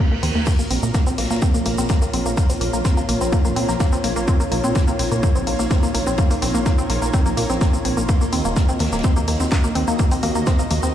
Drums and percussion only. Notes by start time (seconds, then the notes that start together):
0.23 open hi-hat
0.47 kick, crash, ride, shaker
0.59 shaker
0.71 open hi-hat, ride
0.83 shaker
0.94 kick, snare, ride, shaker
1.07 shaker
1.18 snare, open hi-hat, ride
1.24 snare, ride
1.30 snare, ride, shaker
1.36 snare, ride
1.42 kick, ride, shaker
1.54 shaker
1.65 open hi-hat
1.78 snare, shaker
1.89 kick, snare, ride, shaker
2.02 shaker
2.13 open hi-hat, ride
2.26 shaker
2.37 kick, ride, shaker
2.50 open hi-hat, shaker
2.61 open hi-hat, ride
2.74 shaker
2.85 kick, snare, ride, shaker
2.97 shaker
3.09 open hi-hat, ride
3.21 snare, shaker
3.32 kick, ride, shaker
3.45 shaker
3.56 open hi-hat, ride
3.69 snare, shaker
3.80 kick, snare, ride, shaker
3.93 shaker
4.04 open hi-hat, ride
4.16 shaker
4.28 kick, ride, shaker
4.40 shaker
4.52 open hi-hat, ride
4.64 shaker
4.75 kick, snare, ride, shaker
4.88 shaker
4.99 open hi-hat, ride
5.12 shaker
5.23 kick, ride, shaker
5.36 shaker
5.47 open hi-hat
5.59 snare, shaker
5.71 kick, snare, ride, shaker
5.83 shaker
5.95 open hi-hat, ride
6.07 shaker
6.18 kick, ride, shaker
6.31 open hi-hat, shaker
6.42 open hi-hat, ride
6.55 shaker
6.66 kick, snare, ride, shaker
6.78 shaker
6.90 snare, open hi-hat, ride
7.02 snare, shaker
7.13 kick, ride, shaker
7.26 shaker
7.37 open hi-hat, ride
7.50 snare, shaker
7.61 kick, snare, ride, shaker
7.74 shaker
7.85 open hi-hat, ride
7.97 shaker
8.08 kick, ride, shaker
8.21 shaker
8.33 open hi-hat, ride
8.45 shaker
8.56 kick, snare, ride, shaker
8.69 shaker
8.79 snare, open hi-hat, ride
8.86 snare, ride
8.92 snare, ride, shaker
8.99 snare, ride
9.04 kick, ride, shaker
9.16 shaker
9.28 open hi-hat
9.40 snare, shaker
9.52 kick, snare, ride, shaker
9.64 shaker
9.75 open hi-hat, ride
9.88 shaker
9.99 kick, ride, shaker
10.11 open hi-hat, shaker
10.23 open hi-hat, ride
10.35 shaker
10.47 kick, snare, ride, shaker
10.59 shaker
10.71 open hi-hat, ride
10.83 snare, shaker